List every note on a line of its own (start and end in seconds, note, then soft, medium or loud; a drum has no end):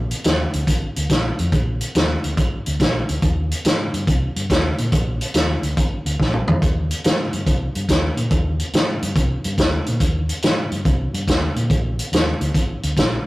0.00 0.12 A#1 medium
0.11 closed hi-hat medium
0.24 0.45 D#2 medium
0.24 snare loud
0.24 closed hi-hat medium
0.53 0.64 D2 medium
0.53 closed hi-hat medium
0.67 0.87 G#1 medium
0.67 kick medium
0.67 closed hi-hat medium
0.96 1.06 D2 medium
0.96 closed hi-hat medium
1.10 1.30 A#1 medium
1.10 kick medium
1.10 snare medium
1.10 closed hi-hat medium
1.39 1.49 F2 loud
1.39 closed hi-hat medium
1.52 1.82 A#1 medium
1.52 kick loud
1.52 closed hi-hat medium
1.81 closed hi-hat medium
1.95 2.15 D#2 medium
1.95 snare loud
1.95 closed hi-hat medium
2.24 2.33 D2 medium
2.24 closed hi-hat medium
2.37 2.57 G#1 medium
2.37 kick loud
2.37 closed hi-hat medium
2.66 2.76 D2 medium
2.66 closed hi-hat medium
2.80 3.00 A#1 medium
2.80 kick medium
2.80 snare loud
2.80 closed hi-hat medium
3.09 3.19 D2 medium
3.09 closed hi-hat medium
3.22 3.52 D#2 medium
3.22 kick loud
3.22 closed hi-hat medium
3.51 closed hi-hat medium
3.65 3.85 G#2 medium
3.65 snare loud
3.65 closed hi-hat medium
3.93 4.03 G2 medium
3.93 closed hi-hat medium
4.07 4.27 C2 medium
4.07 kick loud
4.07 closed hi-hat medium
4.36 4.46 G2 medium
4.36 closed hi-hat medium
4.50 4.70 D#2 medium
4.50 kick medium
4.50 snare loud
4.50 closed hi-hat medium
4.78 4.88 A#2 medium
4.78 closed hi-hat medium
4.92 5.22 A#1 medium
4.92 kick loud
4.92 closed hi-hat medium
5.21 closed hi-hat medium
5.34 5.55 D#2 medium
5.34 snare loud
5.34 closed hi-hat medium
5.63 5.73 D2 medium
5.63 closed hi-hat medium
5.77 5.97 G#1 medium
5.77 kick medium
5.77 closed hi-hat medium
6.05 6.15 D2 medium
6.05 closed hi-hat medium
6.20 6.40 A#1 medium
6.20 kick medium
6.20 snare medium
6.34 mid tom medium
6.48 6.58 F2 medium
6.48 floor tom loud
6.62 6.92 D#2 medium
6.62 kick loud
6.62 closed hi-hat medium
6.91 closed hi-hat medium
7.04 7.25 G#2 medium
7.04 snare loud
7.04 closed hi-hat medium
7.33 7.43 G2 medium
7.33 closed hi-hat medium
7.46 7.67 C2 medium
7.46 kick medium
7.46 closed hi-hat medium
7.75 7.85 G2 medium
7.75 closed hi-hat medium
7.89 8.09 D#2 medium
7.89 kick medium
7.89 snare loud
7.89 closed hi-hat medium
8.17 8.27 A#2 medium
8.17 closed hi-hat medium
8.31 8.61 D#2 medium
8.31 kick loud
8.31 closed hi-hat medium
8.60 closed hi-hat medium
8.73 8.94 G#2 medium
8.73 snare loud
8.73 closed hi-hat medium
9.02 9.12 G2 medium
9.02 closed hi-hat medium
9.16 9.36 C2 medium
9.16 kick loud
9.16 closed hi-hat medium
9.44 9.55 G2 medium
9.44 closed hi-hat medium
9.58 9.78 D#2 medium
9.58 kick medium
9.58 snare loud
9.58 closed hi-hat medium
9.86 9.97 A#2 medium
9.86 closed hi-hat medium
10.00 10.30 D#2 medium
10.00 kick loud
10.00 closed hi-hat medium
10.29 closed hi-hat medium
10.42 10.63 G#2 medium
10.42 snare loud
10.42 closed hi-hat medium
10.71 10.81 G2 medium
10.71 closed hi-hat soft
10.85 11.05 C2 medium
10.85 kick loud
10.85 closed hi-hat medium
11.13 11.23 G2 medium
11.13 closed hi-hat medium
11.28 11.48 D#2 loud
11.28 kick medium
11.28 snare loud
11.28 closed hi-hat medium
11.56 11.71 A#2 medium
11.56 closed hi-hat medium
11.70 12.00 A#1 medium
11.70 kick loud
11.70 closed hi-hat medium
11.99 closed hi-hat medium
12.12 12.32 D#2 medium
12.12 snare loud
12.12 closed hi-hat medium
12.40 12.50 D2 medium
12.40 closed hi-hat medium
12.54 12.74 G#1 medium
12.54 kick medium
12.54 closed hi-hat medium
12.83 12.93 D2 medium
12.83 closed hi-hat medium
12.97 13.17 A#1 loud
12.97 kick medium
12.97 snare loud
12.97 closed hi-hat medium